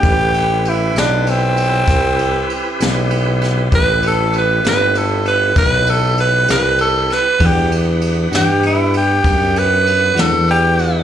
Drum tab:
RD |xxxxxxxxxxxx|xxxxxxxxxxxx|xxxxxxxxxxxx|
SD |---o--o--o-o|---o-----o-o|---o-----o--|
BD |o-----o-----|o-----o-----|o-----o-----|